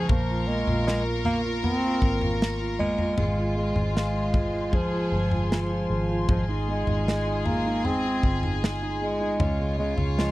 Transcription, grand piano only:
0.00 0.11 C#3 medium
0.00 0.11 F3 medium
0.00 0.11 G#3 medium
0.10 0.47 A#3 medium
0.30 0.66 F4 medium
0.49 0.85 A#3 medium
0.68 1.04 F4 medium
0.87 1.24 A#3 medium
1.06 1.43 F4 soft
1.25 1.62 A#3 medium
1.44 1.82 F4 medium
1.63 2.01 A#3 medium
1.83 2.20 F4 medium
2.02 2.39 A#3 medium
2.22 2.59 F4 medium
2.41 2.78 A#3 medium
2.60 2.97 F4 medium
2.80 3.17 A#3 medium
2.99 3.18 F4 medium
3.18 3.55 G#3 medium
3.37 3.74 F4 medium
3.56 3.93 G#3 medium
3.76 4.13 F4 medium
3.95 4.32 G#3 medium
4.14 4.52 F4 soft
4.34 4.71 G#3 soft
4.53 4.91 F4 medium
4.72 5.10 G#3 medium
4.93 5.30 F4 soft
5.12 5.49 G#3 soft
5.31 5.69 F4 soft
5.50 5.88 G#3 medium
5.70 6.08 F4 soft
5.90 6.27 G#3 soft
6.10 6.28 F4 soft
6.29 6.67 G#3 medium
6.49 6.86 D#4 medium
6.69 7.06 G#3 medium
6.88 7.25 D#4 soft
7.07 7.45 G#3 medium
7.27 7.64 D#4 soft
7.47 7.84 G#3 medium
7.66 8.04 D#4 medium
7.85 8.23 G#3 medium
8.06 8.42 D#4 medium
8.25 8.62 G#3 medium
8.44 8.81 D#4 soft
8.63 9.00 G#3 medium
8.82 9.19 D#4 medium
9.02 9.39 G#3 soft
9.21 9.39 D#4 medium
9.40 10.31 C#4 medium
9.60 9.77 C#3 medium
9.79 9.97 C#3 medium
9.98 10.31 C#3 soft
10.18 10.31 F3 medium

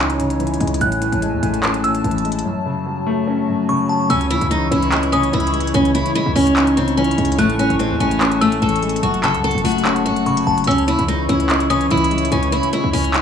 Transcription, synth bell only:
0.81 1.80 F#6 loud
1.84 2.03 E6 medium
3.69 3.88 C#6 medium
3.89 4.09 A5 medium
4.10 5.09 E6 loud
5.13 5.32 D#6 medium
7.39 8.38 F#6 loud
8.41 8.61 E6 medium
10.27 10.46 C#6 medium
10.47 10.66 A5 medium
10.68 11.66 E6 loud
11.70 11.90 D#6 medium

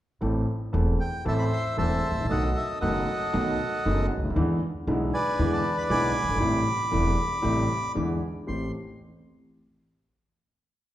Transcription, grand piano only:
0.21 0.43 A1 medium
0.21 0.44 A2 medium
0.21 0.43 E3 medium
0.21 0.43 A3 soft
0.21 0.44 C4 soft
0.21 0.44 A4 medium
0.73 0.95 E1 medium
0.73 0.95 E2 medium
0.73 0.95 E3 soft
0.73 0.95 A3 soft
0.73 0.95 C4 soft
0.73 0.95 A4 medium
1.25 1.47 A1 medium
1.25 1.48 A2 medium
1.25 1.47 E3 medium
1.25 1.47 A3 medium
1.25 1.48 C4 medium
1.25 1.48 A4 medium
1.77 2.00 E1 medium
1.77 2.00 E2 medium
1.77 1.99 E3 soft
1.77 2.00 A3 soft
1.77 2.00 C4 soft
1.77 2.00 A4 medium
2.10 2.17 G#1 soft
2.16 2.23 A1 soft
2.23 2.30 A#1 soft
2.29 2.52 B1 medium
2.29 2.52 B2 medium
2.29 2.52 D#3 medium
2.29 2.52 A3 soft
2.29 2.52 B3 soft
2.29 2.52 F#4 medium
2.82 3.04 F#1 medium
2.82 3.04 F#2 medium
2.82 3.04 D#3 medium
2.82 3.04 A3 soft
2.82 3.04 B3 medium
2.82 3.04 F#4 medium
3.33 3.55 B1 medium
3.33 3.55 B2 medium
3.33 3.55 D#3 medium
3.33 3.55 A3 medium
3.33 3.55 B3 medium
3.33 3.56 F#4 medium
3.86 4.07 F#1 medium
3.86 4.07 F#2 medium
3.86 4.07 D#3 medium
3.86 4.07 A3 medium
3.86 4.07 B3 soft
3.86 4.07 F#4 medium
4.18 4.24 C#2 soft
4.25 4.31 D2 soft
4.31 4.37 D#2 medium
4.36 4.58 E2 medium
4.36 4.58 D3 medium
4.36 4.58 E3 medium
4.36 4.58 G#3 medium
4.36 4.58 B3 medium
4.36 4.58 E4 medium
4.87 5.10 B1 medium
4.87 5.10 B2 medium
4.87 5.09 D3 medium
4.87 5.10 G#3 soft
4.87 5.10 B3 medium
4.87 5.10 E4 medium
5.39 5.61 E2 medium
5.39 5.61 D3 medium
5.39 5.61 E3 medium
5.39 5.61 G#3 medium
5.39 5.61 B3 medium
5.39 5.61 E4 medium
5.90 6.12 B1 medium
5.90 6.12 B2 medium
5.90 6.12 D3 medium
5.90 6.12 G#3 medium
5.90 6.12 B3 medium
5.90 6.12 E4 medium
6.23 6.29 F#1 soft
6.28 6.35 G1 soft
6.35 6.41 G#1 soft
6.40 6.62 A1 medium
6.40 6.62 A2 medium
6.40 6.62 C3 medium
6.40 6.62 G3 soft
6.40 6.62 A3 medium
6.40 6.62 E4 medium
6.91 7.14 E1 medium
6.91 7.13 E2 medium
6.91 7.13 C3 medium
6.91 7.14 G3 soft
6.91 7.14 A3 medium
6.91 7.14 E4 medium
7.42 7.65 A1 medium
7.42 7.65 A2 medium
7.42 7.65 C3 medium
7.42 7.65 G3 medium
7.42 7.65 A3 medium
7.42 7.65 E4 medium
7.95 8.18 E2 medium
7.95 8.17 D3 soft
7.95 8.18 E3 medium
7.95 8.18 G#3 medium
7.95 8.18 B3 soft
7.95 8.18 E4 medium
8.47 8.69 A1 soft
8.47 8.69 A3 soft
8.47 8.69 C4 soft
8.47 8.69 G4 soft

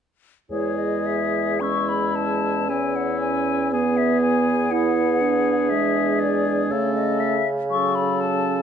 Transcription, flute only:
0.51 0.80 C#5 soft
0.78 1.08 D#5 soft
1.06 1.62 E5 soft
1.60 1.90 C#6 soft
1.89 2.17 B5 soft
2.15 2.71 A5 soft
2.69 2.97 G#5 soft
2.96 3.20 F#5 soft
3.20 3.71 G#5 soft
3.73 3.99 G#5 medium
3.97 4.21 E5 soft
4.21 4.72 G#5 medium
4.71 5.71 F#5 medium
5.69 6.21 E5 medium
6.20 6.69 D5 medium
6.70 6.94 C#5 soft
6.94 7.21 D#5 soft
7.20 7.48 E5 soft
7.71 7.97 C#6 medium
7.95 8.22 B5 soft
8.20 8.62 A5 medium

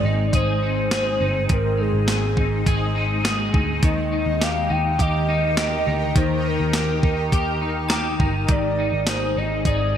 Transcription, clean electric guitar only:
0.00 1.48 G#2 medium
0.00 1.50 G#3 medium
0.00 0.63 C4 soft
0.00 0.32 G#4 soft
0.05 0.62 D#4 medium
0.34 0.90 G#4 medium
0.62 1.20 D#4 medium
0.92 2.06 G#4 medium
1.20 1.77 D#4 medium
1.49 3.82 G#2 medium
1.77 2.36 D#4 soft
2.07 2.65 G#4 medium
2.37 2.95 D#4 soft
2.66 3.23 G#4 medium
2.95 3.52 D#4 medium
3.24 3.88 G#4 medium
3.53 4.11 D#4 medium
3.83 6.15 D#3 medium
4.12 4.69 D#4 soft
4.40 4.98 G4 medium
4.69 5.28 D#4 medium
4.99 5.57 G4 medium
5.28 5.86 D#4 medium
5.58 6.72 G4 medium
5.86 6.44 D#4 soft
6.16 9.66 D#3 medium
6.45 7.03 D#4 medium
6.74 7.31 G4 medium
7.03 7.61 D#4 soft
7.32 7.90 G4 medium
7.61 8.20 D#4 medium
7.91 8.55 G4 medium
8.20 8.78 D#4 medium
8.50 9.97 G#2 medium
8.79 9.37 D#4 medium
9.08 9.65 G#4 medium
9.37 9.94 D#4 medium
9.66 9.97 G#4 medium

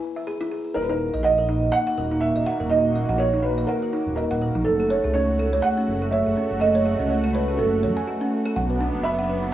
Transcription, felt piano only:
0.74 0.83 A#4 loud
0.82 0.90 B4 medium
0.89 1.25 A#4 loud
1.23 1.74 D#5 loud
1.72 2.23 F#5 loud
2.21 2.67 E5 loud
2.69 3.20 D#5 loud
3.18 3.42 C#5 loud
3.43 3.68 B4 loud
3.67 4.14 A#4 loud
4.16 4.67 A#4 medium
4.65 5.16 A4 medium
5.13 5.64 C#5 loud
5.62 6.08 F#5 loud
6.11 6.62 E5 medium
6.60 7.11 D#5 loud
7.08 7.34 C#5 medium
7.33 7.59 B4 medium
7.57 8.27 A4 medium
9.03 9.54 E5 loud

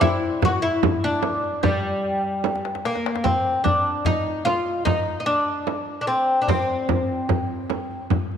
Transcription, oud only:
0.01 0.44 E4 loud
0.45 0.62 F#4 medium
0.62 1.04 E4 loud
1.04 1.66 D4 medium
1.63 2.67 G3 medium
2.86 3.27 A#3 medium
3.24 3.64 C4 medium
3.64 4.05 D4 medium
4.06 4.45 D#4 medium
4.45 4.85 F4 medium
4.85 5.19 D#4 medium
5.20 5.26 D#4 medium
5.26 6.00 D4 medium
6.01 6.07 D4 medium
6.07 6.39 C4 medium
6.42 6.49 D4 medium
6.48 8.07 C4 medium

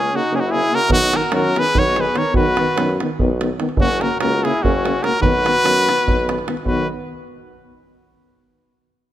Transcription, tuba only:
0.00 0.12 C#2 medium
0.31 0.64 F#1 medium
0.89 1.13 B1 medium
1.32 1.56 F#2 loud
1.75 2.07 B1 medium
2.34 2.57 B1 medium
2.76 3.00 F#2 loud
3.20 3.52 B1 loud
3.78 4.02 F#1 medium
4.22 4.45 C#2 loud
4.64 4.96 F#1 loud
5.22 5.46 B1 medium
5.64 5.88 F#2 medium
6.07 6.39 B1 medium
6.65 6.88 B1 medium

